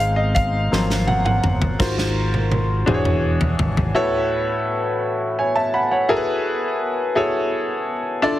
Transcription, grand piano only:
Already playing: G#3 C4 D#4
0.00 F5
0.16 D#5
0.35 F5
0.72 F3 F#3 A#3 C4
1.07 F#5
1.25 F#5
1.79 G#2 F4 F#4 A#4 C5
2.86 E3 D4 F#4 G#4 C5
2.94 C#5
3.95 A2 E4 F#4 A4 B4 C#5
5.39 C#5 G#5
5.56 E5 A5
5.74 F#5 B5
5.91 C#5 F#5
6.09 E4 F#4 G#4 A4 A#4
6.16 B4
7.15 E4 F#4 G#4 A4 C#5
8.22 D3 D4 E4 F4 A4 D5

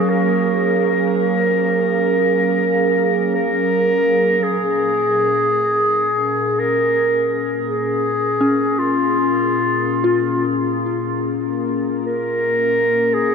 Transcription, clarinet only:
Already playing: G#4
0.09 A#4
3.35 A#4
4.44 G#4
6.60 A#4
7.69 G#4
8.79 F4
12.06 A#4
13.14 G#4

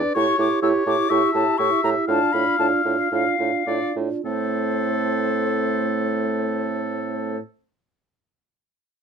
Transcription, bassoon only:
0.16 A2
0.38 A2
0.63 A2
0.86 A2
1.11 A2
1.34 A2
1.59 A2
1.84 A2
2.08 A2
2.34 A2
2.59 A2
2.85 A2
3.12 A2
3.40 A2
3.67 A2
3.96 A2
4.25 A2

